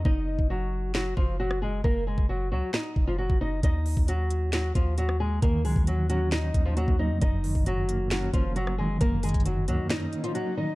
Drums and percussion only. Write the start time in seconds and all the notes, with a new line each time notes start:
0.05 kick
0.39 kick
0.95 snare, clap
1.17 kick
1.51 cross-stick
1.84 kick
2.18 kick
2.74 snare, clap
2.96 kick
3.30 kick
3.63 kick, closed hi-hat
3.86 open hi-hat
3.97 kick
4.08 closed hi-hat
4.30 closed hi-hat
4.53 snare, clap, closed hi-hat
4.75 kick, closed hi-hat
4.98 closed hi-hat
5.09 cross-stick
5.42 kick, closed hi-hat
5.65 open hi-hat
5.76 kick
5.87 closed hi-hat
6.10 closed hi-hat
6.32 snare, clap, closed hi-hat
6.54 kick, closed hi-hat
6.77 closed hi-hat
6.88 kick
7.22 kick, closed hi-hat
7.44 open hi-hat
7.55 kick
7.66 closed hi-hat
7.89 closed hi-hat
8.11 snare, clap, closed hi-hat
8.34 kick, closed hi-hat
8.56 closed hi-hat
8.67 cross-stick
9.01 kick, closed hi-hat
9.23 closed hi-hat, open hi-hat
9.29 closed hi-hat
9.34 kick, closed hi-hat
9.40 closed hi-hat
9.46 closed hi-hat
9.68 closed hi-hat
9.90 snare, clap, closed hi-hat
10.13 closed hi-hat
10.24 closed hi-hat
10.35 closed hi-hat